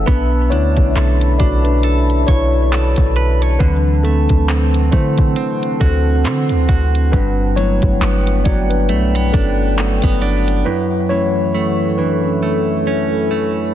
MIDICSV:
0, 0, Header, 1, 6, 480
1, 0, Start_track
1, 0, Key_signature, 2, "minor"
1, 0, Tempo, 882353
1, 40, Time_signature, 4, 2, 24, 8
1, 7475, End_track
2, 0, Start_track
2, 0, Title_t, "Ambient pad"
2, 0, Program_c, 0, 92
2, 0, Note_on_c, 0, 76, 76
2, 0, Note_on_c, 0, 81, 71
2, 42, Note_on_c, 0, 83, 69
2, 1939, Note_off_c, 0, 76, 0
2, 1942, Note_off_c, 0, 83, 0
2, 1960, Note_on_c, 0, 78, 69
2, 1961, Note_on_c, 0, 60, 77
2, 3859, Note_off_c, 0, 81, 0
2, 3861, Note_off_c, 0, 60, 0
2, 3879, Note_on_c, 0, 71, 81
2, 3880, Note_on_c, 0, 79, 72
2, 5781, Note_off_c, 0, 71, 0
2, 5781, Note_off_c, 0, 79, 0
2, 5800, Note_on_c, 0, 76, 74
2, 5801, Note_on_c, 0, 69, 79
2, 5801, Note_on_c, 0, 85, 85
2, 6751, Note_off_c, 0, 85, 0
2, 6764, Note_on_c, 0, 83, 81
2, 7475, Note_off_c, 0, 69, 0
2, 7475, Note_off_c, 0, 76, 0
2, 7475, Note_off_c, 0, 78, 0
2, 7475, Note_off_c, 0, 83, 0
2, 7475, End_track
3, 0, Start_track
3, 0, Title_t, "Tine electric piano"
3, 0, Program_c, 1, 4
3, 0, Control_c, 1, 64, 127
3, 33, Note_on_c, 1, 71, 99
3, 45, Note_on_c, 1, 62, 77
3, 46, Control_c, 1, 64, 0
3, 131, Control_c, 1, 64, 127
3, 260, Note_off_c, 1, 71, 0
3, 266, Note_off_c, 1, 62, 0
3, 273, Note_on_c, 1, 73, 98
3, 277, Note_on_c, 1, 50, 55
3, 281, Note_on_c, 1, 57, 51
3, 284, Note_on_c, 1, 61, 59
3, 285, Note_on_c, 1, 64, 75
3, 613, Note_off_c, 1, 50, 0
3, 614, Note_off_c, 1, 57, 0
3, 616, Note_off_c, 1, 61, 0
3, 735, Note_off_c, 1, 73, 0
3, 741, Note_off_c, 1, 64, 0
3, 753, Note_on_c, 1, 74, 91
3, 766, Note_on_c, 1, 66, 75
3, 892, Note_on_c, 1, 71, 83
3, 893, Note_off_c, 1, 66, 0
3, 900, Note_off_c, 1, 74, 0
3, 905, Note_on_c, 1, 62, 61
3, 1215, Note_off_c, 1, 71, 0
3, 1221, Note_off_c, 1, 62, 0
3, 1233, Note_on_c, 1, 73, 91
3, 1245, Note_on_c, 1, 64, 73
3, 1935, Note_off_c, 1, 73, 0
3, 1941, Note_off_c, 1, 64, 0
3, 1953, Note_on_c, 1, 71, 94
3, 1957, Note_on_c, 1, 52, 55
3, 1959, Note_on_c, 1, 54, 53
3, 1962, Note_on_c, 1, 60, 62
3, 1964, Note_on_c, 1, 62, 74
3, 1967, Control_c, 1, 64, 0
3, 2075, Control_c, 1, 64, 127
3, 2185, Note_off_c, 1, 62, 0
3, 2194, Note_on_c, 1, 69, 89
3, 2199, Note_off_c, 1, 60, 0
3, 2204, Note_off_c, 1, 71, 0
3, 2206, Note_on_c, 1, 60, 66
3, 2657, Note_off_c, 1, 52, 0
3, 2658, Note_off_c, 1, 54, 0
3, 2661, Note_off_c, 1, 60, 0
3, 2675, Note_on_c, 1, 72, 90
3, 2686, Note_on_c, 1, 64, 72
3, 2692, Note_off_c, 1, 69, 0
3, 3136, Note_off_c, 1, 72, 0
3, 3141, Note_off_c, 1, 64, 0
3, 3156, Note_on_c, 1, 69, 82
3, 3167, Note_on_c, 1, 60, 65
3, 3862, Note_off_c, 1, 60, 0
3, 3874, Note_on_c, 1, 71, 95
3, 3884, Note_on_c, 1, 62, 77
3, 3888, Control_c, 1, 64, 0
3, 3900, Note_off_c, 1, 69, 0
3, 3982, Control_c, 1, 64, 127
3, 4100, Note_off_c, 1, 71, 0
3, 4105, Note_off_c, 1, 62, 0
3, 4114, Note_on_c, 1, 73, 95
3, 4117, Note_on_c, 1, 54, 58
3, 4121, Note_on_c, 1, 57, 50
3, 4124, Note_on_c, 1, 59, 63
3, 4125, Note_on_c, 1, 64, 76
3, 4575, Note_off_c, 1, 73, 0
3, 4581, Note_off_c, 1, 64, 0
3, 4593, Note_on_c, 1, 74, 91
3, 4604, Note_on_c, 1, 66, 70
3, 4726, Note_off_c, 1, 74, 0
3, 4732, Note_off_c, 1, 66, 0
3, 4733, Note_on_c, 1, 71, 83
3, 4744, Note_on_c, 1, 62, 64
3, 4817, Note_off_c, 1, 54, 0
3, 4819, Note_off_c, 1, 57, 0
3, 4820, Note_off_c, 1, 59, 0
3, 4837, Note_on_c, 1, 54, 46
3, 4839, Note_on_c, 1, 57, 45
3, 4841, Note_on_c, 1, 59, 54
3, 5057, Note_off_c, 1, 54, 0
3, 5058, Note_off_c, 1, 57, 0
3, 5059, Note_off_c, 1, 59, 0
3, 5061, Note_off_c, 1, 62, 0
3, 5073, Note_on_c, 1, 69, 82
3, 5084, Note_on_c, 1, 61, 60
3, 5087, Note_off_c, 1, 71, 0
3, 5780, Note_off_c, 1, 61, 0
3, 5794, Note_on_c, 1, 71, 94
3, 5804, Note_on_c, 1, 64, 77
3, 5808, Control_c, 1, 64, 0
3, 5818, Note_off_c, 1, 69, 0
3, 5893, Control_c, 1, 64, 127
3, 5903, Note_off_c, 1, 71, 0
3, 5911, Note_off_c, 1, 64, 0
3, 6034, Note_on_c, 1, 73, 93
3, 6037, Note_on_c, 1, 52, 57
3, 6040, Note_on_c, 1, 57, 51
3, 6044, Note_on_c, 1, 61, 63
3, 6045, Note_on_c, 1, 64, 72
3, 6501, Note_off_c, 1, 64, 0
3, 6515, Note_on_c, 1, 71, 77
3, 6525, Note_on_c, 1, 62, 64
3, 6532, Note_off_c, 1, 73, 0
3, 6652, Note_off_c, 1, 62, 0
3, 6654, Note_on_c, 1, 69, 63
3, 6657, Note_off_c, 1, 61, 0
3, 6661, Note_off_c, 1, 71, 0
3, 6664, Note_on_c, 1, 61, 51
3, 6737, Note_off_c, 1, 52, 0
3, 6739, Note_off_c, 1, 57, 0
3, 7456, Note_off_c, 1, 69, 0
3, 7461, Note_off_c, 1, 61, 0
3, 7475, End_track
4, 0, Start_track
4, 0, Title_t, "Clean electric guitar"
4, 0, Program_c, 2, 27
4, 40, Note_on_c, 2, 59, 83
4, 281, Note_on_c, 2, 62, 63
4, 519, Note_on_c, 2, 69, 61
4, 758, Note_off_c, 2, 62, 0
4, 760, Note_on_c, 2, 62, 59
4, 999, Note_off_c, 2, 69, 0
4, 1001, Note_on_c, 2, 69, 58
4, 1240, Note_on_c, 2, 73, 64
4, 1479, Note_off_c, 2, 69, 0
4, 1481, Note_on_c, 2, 69, 64
4, 1719, Note_off_c, 2, 73, 0
4, 1721, Note_on_c, 2, 71, 65
4, 1859, Note_off_c, 2, 71, 0
4, 1859, Note_on_c, 2, 73, 52
4, 1960, Note_off_c, 2, 59, 0
4, 1961, Note_on_c, 2, 50, 83
4, 2016, Note_off_c, 2, 73, 0
4, 2201, Note_on_c, 2, 57, 61
4, 2438, Note_off_c, 2, 62, 0
4, 2441, Note_on_c, 2, 60, 62
4, 2673, Note_off_c, 2, 57, 0
4, 2679, Note_on_c, 2, 57, 59
4, 2911, Note_off_c, 2, 60, 0
4, 2918, Note_on_c, 2, 60, 62
4, 3156, Note_off_c, 2, 69, 0
4, 3159, Note_on_c, 2, 66, 62
4, 3391, Note_off_c, 2, 60, 0
4, 3397, Note_on_c, 2, 60, 65
4, 3635, Note_off_c, 2, 66, 0
4, 3637, Note_on_c, 2, 66, 62
4, 3878, Note_on_c, 2, 43, 84
4, 3881, Note_off_c, 2, 50, 0
4, 3934, Note_off_c, 2, 60, 0
4, 3936, Note_off_c, 2, 57, 0
4, 4118, Note_on_c, 2, 54, 58
4, 4358, Note_on_c, 2, 59, 63
4, 4596, Note_off_c, 2, 54, 0
4, 4598, Note_on_c, 2, 54, 55
4, 4836, Note_off_c, 2, 59, 0
4, 4838, Note_on_c, 2, 57, 58
4, 4977, Note_off_c, 2, 57, 0
4, 4977, Note_on_c, 2, 59, 54
4, 5076, Note_off_c, 2, 66, 0
4, 5079, Note_on_c, 2, 62, 64
4, 5316, Note_off_c, 2, 59, 0
4, 5318, Note_on_c, 2, 57, 59
4, 5459, Note_off_c, 2, 57, 0
4, 5459, Note_on_c, 2, 59, 52
4, 5553, Note_off_c, 2, 62, 0
4, 5559, Note_on_c, 2, 62, 63
4, 5797, Note_off_c, 2, 43, 0
4, 5799, Note_on_c, 2, 42, 84
4, 5856, Note_off_c, 2, 59, 0
4, 5856, Note_off_c, 2, 62, 0
4, 6037, Note_off_c, 2, 54, 0
4, 6040, Note_on_c, 2, 52, 62
4, 6281, Note_on_c, 2, 57, 61
4, 6514, Note_off_c, 2, 52, 0
4, 6521, Note_on_c, 2, 52, 59
4, 6758, Note_off_c, 2, 57, 0
4, 6760, Note_on_c, 2, 57, 59
4, 7001, Note_on_c, 2, 61, 64
4, 7238, Note_off_c, 2, 57, 0
4, 7240, Note_on_c, 2, 57, 62
4, 7475, Note_off_c, 2, 42, 0
4, 7475, Note_off_c, 2, 52, 0
4, 7475, Note_off_c, 2, 57, 0
4, 7475, Note_off_c, 2, 61, 0
4, 7475, End_track
5, 0, Start_track
5, 0, Title_t, "808-style bass"
5, 0, Program_c, 3, 38
5, 42, Note_on_c, 3, 35, 98
5, 282, Note_on_c, 3, 38, 91
5, 290, Note_off_c, 3, 35, 0
5, 414, Note_off_c, 3, 38, 0
5, 421, Note_on_c, 3, 35, 96
5, 517, Note_off_c, 3, 35, 0
5, 522, Note_on_c, 3, 35, 104
5, 751, Note_off_c, 3, 35, 0
5, 763, Note_on_c, 3, 35, 101
5, 1222, Note_off_c, 3, 35, 0
5, 1242, Note_on_c, 3, 35, 91
5, 1605, Note_off_c, 3, 35, 0
5, 1621, Note_on_c, 3, 35, 98
5, 1947, Note_off_c, 3, 35, 0
5, 1961, Note_on_c, 3, 38, 101
5, 2325, Note_off_c, 3, 38, 0
5, 2340, Note_on_c, 3, 38, 92
5, 2667, Note_off_c, 3, 38, 0
5, 2682, Note_on_c, 3, 50, 96
5, 2911, Note_off_c, 3, 50, 0
5, 3162, Note_on_c, 3, 38, 97
5, 3401, Note_on_c, 3, 50, 97
5, 3409, Note_off_c, 3, 38, 0
5, 3539, Note_on_c, 3, 38, 97
5, 3547, Note_off_c, 3, 50, 0
5, 3635, Note_off_c, 3, 38, 0
5, 3640, Note_on_c, 3, 38, 105
5, 3871, Note_off_c, 3, 38, 0
5, 3880, Note_on_c, 3, 31, 100
5, 4244, Note_off_c, 3, 31, 0
5, 4259, Note_on_c, 3, 31, 91
5, 4356, Note_off_c, 3, 31, 0
5, 4361, Note_on_c, 3, 31, 106
5, 4591, Note_off_c, 3, 31, 0
5, 4601, Note_on_c, 3, 31, 105
5, 4841, Note_on_c, 3, 35, 88
5, 4849, Note_off_c, 3, 31, 0
5, 5069, Note_off_c, 3, 35, 0
5, 5082, Note_on_c, 3, 31, 93
5, 5445, Note_off_c, 3, 31, 0
5, 5460, Note_on_c, 3, 31, 99
5, 5787, Note_off_c, 3, 31, 0
5, 7475, End_track
6, 0, Start_track
6, 0, Title_t, "Drums"
6, 41, Note_on_c, 9, 36, 106
6, 43, Note_on_c, 9, 42, 60
6, 96, Note_off_c, 9, 36, 0
6, 97, Note_off_c, 9, 42, 0
6, 282, Note_on_c, 9, 42, 62
6, 337, Note_off_c, 9, 42, 0
6, 417, Note_on_c, 9, 42, 51
6, 420, Note_on_c, 9, 36, 78
6, 471, Note_off_c, 9, 42, 0
6, 474, Note_off_c, 9, 36, 0
6, 525, Note_on_c, 9, 39, 93
6, 525, Note_on_c, 9, 42, 58
6, 579, Note_off_c, 9, 42, 0
6, 580, Note_off_c, 9, 39, 0
6, 660, Note_on_c, 9, 42, 54
6, 714, Note_off_c, 9, 42, 0
6, 759, Note_on_c, 9, 42, 74
6, 762, Note_on_c, 9, 36, 90
6, 814, Note_off_c, 9, 42, 0
6, 816, Note_off_c, 9, 36, 0
6, 896, Note_on_c, 9, 42, 49
6, 951, Note_off_c, 9, 42, 0
6, 997, Note_on_c, 9, 42, 76
6, 1051, Note_off_c, 9, 42, 0
6, 1141, Note_on_c, 9, 42, 41
6, 1196, Note_off_c, 9, 42, 0
6, 1239, Note_on_c, 9, 42, 64
6, 1241, Note_on_c, 9, 36, 96
6, 1294, Note_off_c, 9, 42, 0
6, 1296, Note_off_c, 9, 36, 0
6, 1480, Note_on_c, 9, 42, 69
6, 1485, Note_on_c, 9, 39, 101
6, 1535, Note_off_c, 9, 42, 0
6, 1540, Note_off_c, 9, 39, 0
6, 1611, Note_on_c, 9, 42, 57
6, 1620, Note_on_c, 9, 36, 89
6, 1666, Note_off_c, 9, 42, 0
6, 1674, Note_off_c, 9, 36, 0
6, 1718, Note_on_c, 9, 42, 46
6, 1772, Note_off_c, 9, 42, 0
6, 1860, Note_on_c, 9, 42, 50
6, 1915, Note_off_c, 9, 42, 0
6, 1960, Note_on_c, 9, 36, 112
6, 1960, Note_on_c, 9, 42, 55
6, 2014, Note_off_c, 9, 36, 0
6, 2014, Note_off_c, 9, 42, 0
6, 2201, Note_on_c, 9, 42, 62
6, 2255, Note_off_c, 9, 42, 0
6, 2335, Note_on_c, 9, 42, 49
6, 2339, Note_on_c, 9, 36, 83
6, 2390, Note_off_c, 9, 42, 0
6, 2393, Note_off_c, 9, 36, 0
6, 2444, Note_on_c, 9, 42, 55
6, 2445, Note_on_c, 9, 39, 93
6, 2498, Note_off_c, 9, 42, 0
6, 2499, Note_off_c, 9, 39, 0
6, 2580, Note_on_c, 9, 42, 53
6, 2634, Note_off_c, 9, 42, 0
6, 2678, Note_on_c, 9, 42, 72
6, 2681, Note_on_c, 9, 36, 90
6, 2733, Note_off_c, 9, 42, 0
6, 2735, Note_off_c, 9, 36, 0
6, 2815, Note_on_c, 9, 42, 47
6, 2820, Note_on_c, 9, 36, 101
6, 2870, Note_off_c, 9, 42, 0
6, 2875, Note_off_c, 9, 36, 0
6, 2916, Note_on_c, 9, 42, 78
6, 2971, Note_off_c, 9, 42, 0
6, 3062, Note_on_c, 9, 42, 46
6, 3116, Note_off_c, 9, 42, 0
6, 3160, Note_on_c, 9, 42, 61
6, 3161, Note_on_c, 9, 36, 94
6, 3215, Note_off_c, 9, 36, 0
6, 3215, Note_off_c, 9, 42, 0
6, 3401, Note_on_c, 9, 42, 69
6, 3406, Note_on_c, 9, 39, 107
6, 3456, Note_off_c, 9, 42, 0
6, 3460, Note_off_c, 9, 39, 0
6, 3532, Note_on_c, 9, 42, 54
6, 3587, Note_off_c, 9, 42, 0
6, 3638, Note_on_c, 9, 42, 48
6, 3639, Note_on_c, 9, 36, 89
6, 3692, Note_off_c, 9, 42, 0
6, 3694, Note_off_c, 9, 36, 0
6, 3780, Note_on_c, 9, 42, 50
6, 3835, Note_off_c, 9, 42, 0
6, 3879, Note_on_c, 9, 36, 105
6, 3879, Note_on_c, 9, 42, 58
6, 3933, Note_off_c, 9, 36, 0
6, 3934, Note_off_c, 9, 42, 0
6, 4120, Note_on_c, 9, 42, 64
6, 4174, Note_off_c, 9, 42, 0
6, 4254, Note_on_c, 9, 42, 51
6, 4258, Note_on_c, 9, 36, 82
6, 4308, Note_off_c, 9, 42, 0
6, 4312, Note_off_c, 9, 36, 0
6, 4363, Note_on_c, 9, 42, 57
6, 4364, Note_on_c, 9, 39, 100
6, 4418, Note_off_c, 9, 39, 0
6, 4418, Note_off_c, 9, 42, 0
6, 4499, Note_on_c, 9, 42, 55
6, 4553, Note_off_c, 9, 42, 0
6, 4599, Note_on_c, 9, 42, 73
6, 4601, Note_on_c, 9, 36, 92
6, 4653, Note_off_c, 9, 42, 0
6, 4655, Note_off_c, 9, 36, 0
6, 4736, Note_on_c, 9, 42, 49
6, 4790, Note_off_c, 9, 42, 0
6, 4836, Note_on_c, 9, 42, 76
6, 4890, Note_off_c, 9, 42, 0
6, 4981, Note_on_c, 9, 42, 43
6, 5036, Note_off_c, 9, 42, 0
6, 5080, Note_on_c, 9, 42, 63
6, 5081, Note_on_c, 9, 36, 99
6, 5134, Note_off_c, 9, 42, 0
6, 5135, Note_off_c, 9, 36, 0
6, 5320, Note_on_c, 9, 42, 73
6, 5325, Note_on_c, 9, 39, 103
6, 5375, Note_off_c, 9, 42, 0
6, 5379, Note_off_c, 9, 39, 0
6, 5451, Note_on_c, 9, 42, 58
6, 5459, Note_on_c, 9, 36, 91
6, 5506, Note_off_c, 9, 42, 0
6, 5513, Note_off_c, 9, 36, 0
6, 5558, Note_on_c, 9, 42, 47
6, 5612, Note_off_c, 9, 42, 0
6, 5700, Note_on_c, 9, 42, 52
6, 5755, Note_off_c, 9, 42, 0
6, 7475, End_track
0, 0, End_of_file